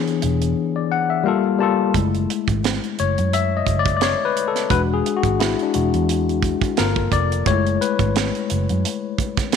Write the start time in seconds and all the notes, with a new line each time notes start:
Already playing: E3 B3 D4 G#4 C#5
0.07 closed hi-hat
0.22 E1, closed hi-hat
0.41 closed hi-hat
0.76 D5
0.92 F#5
1.10 E5
1.24 G3 A#3 F4 F5
1.28 A4
1.58 G3 A#3 F4 A5
1.63 A4
1.94 F#1 G#3 A3 E4, kick, closed hi-hat
2.14 closed hi-hat
2.30 closed hi-hat
2.48 G#1, kick, closed hi-hat
2.64 snare, closed hi-hat
2.84 closed hi-hat
2.98 F#1 C#5, closed hi-hat
3.18 F#2, closed hi-hat
3.33 E5, closed hi-hat
3.57 D#5
3.67 F#1, kick, closed hi-hat
3.79 D5
3.86 kick, closed hi-hat
3.97 D5
4.01 C#5, snare, closed hi-hat
4.25 B4
4.36 closed hi-hat
4.48 A4
4.56 snare, closed hi-hat
4.70 E1 G#3 D4 F#4 B4, kick, closed hi-hat
4.94 G#4
5.06 closed hi-hat
5.17 F#4
5.23 G#1, kick, closed hi-hat
5.40 E4, snare, closed hi-hat
5.59 D4, closed hi-hat
5.74 E1 G#3 D4 F#4, closed hi-hat
5.94 E2, closed hi-hat
6.09 closed hi-hat
6.29 closed hi-hat
6.42 kick, closed hi-hat
6.61 kick, closed hi-hat
6.77 G1 A#3 F4 A4 A#4, snare, closed hi-hat
6.96 kick
7.12 F1 D5, kick, closed hi-hat
7.32 closed hi-hat
7.46 F#1 G#3 A3 E4 C#5, kick, closed hi-hat
7.66 closed hi-hat
7.81 B4, closed hi-hat
7.99 G#1, kick, closed hi-hat
8.15 snare, closed hi-hat
8.35 closed hi-hat
8.50 F#1, closed hi-hat
8.69 F#2, closed hi-hat
8.85 closed hi-hat
9.19 kick, closed hi-hat
9.37 kick, snare, closed hi-hat
9.52 snare, closed hi-hat